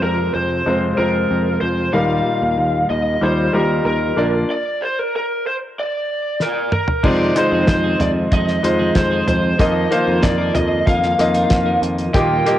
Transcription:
Already playing: C3 F3 G#3 C4 F4 C5
0.02 F2 A#4
0.34 F2 C5
0.66 F2 G#3 C4 F4 C5
0.97 F2 G#3 C4 F4 A#4 C5
1.31 F2
1.61 F2 C5
1.93 D#2 A#2 D#3 G3 A#3 D#4 F4 A#4 F5
2.42 D#2
2.58 D#2
2.90 D#2 D#5
3.21 D#2 G3 D#4 F4 C5
3.53 D#2 G3 D#4 F4 G4 A#4
3.85 D#2 A#4
4.16 A#1 D3 F3 A#3 D4 F4 D5
4.50 D5
4.82 C5
4.99 A#4
5.16 A#4
5.47 C5
5.80 D5
6.40 A#4, snare
6.72 A#4, mid tom
6.88 floor tom
7.03 F2 C3 D#3 F3 G#3 C4 D#4 F4 G#4 C5 D5, kick, crash
7.36 G#3 D#4 F4 C5, closed hi-hat
7.52 F2 C4 D#4 G#4
7.67 F2 C5, kick, snare, closed hi-hat
7.84 C4 D#4 G#4
8.00 F2 D5, closed hi-hat, floor tom
8.32 F2 F3 C4 D#4 G#4 D#5, kick, closed hi-hat
8.48 snare
8.63 F2 G#3 D#4 F4 C5, closed hi-hat
8.79 F3 C4 D#4 G#4
8.95 F2 C5, kick, snare, closed hi-hat
9.11 F3 C4 D#4 G#4
9.28 F2 C5, closed hi-hat, floor tom
9.58 F2 D#3 F3 A#3 D#4 F4 A#4 D#5, kick, closed hi-hat
9.91 A#3 D#4 F4 C5 F5, closed hi-hat
10.06 F2 A#3 D#4 A#4
10.23 F2 D5, kick, snare, closed hi-hat
10.38 A#3 D#4 A#4
10.55 F2 D#5, closed hi-hat, floor tom
10.86 F2 F3 A#3 D#4 A#4 F5, kick, closed hi-hat
11.03 snare
11.18 F2 A#3 D#4 F4 D#5, closed hi-hat
11.34 F3 A#3 D#4 A#4, closed hi-hat
11.50 F2, kick, snare, closed hi-hat
11.66 F3 A#3 D#4 A#4
11.82 F2, closed hi-hat
11.98 closed hi-hat
12.14 D#2 A#2 F3 G3 A#3 D#4 F4 G4 D#5 G5, kick, closed hi-hat
12.45 A#3 F4 G4 D#5, closed hi-hat

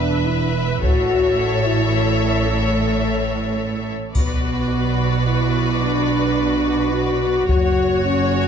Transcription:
Already playing: E1 E2 B4 E5
0.00 D4
0.26 E4
0.81 A1 A2 F#4 A4 C#5 E5, taiko
1.66 E4
2.50 A3
4.15 B1 B2 B3 F#4 B4 D5, taiko, triangle
5.26 E4
5.82 D4
6.93 F#4
7.48 F#1 F#2 F#4 C#5, taiko
8.05 C#4

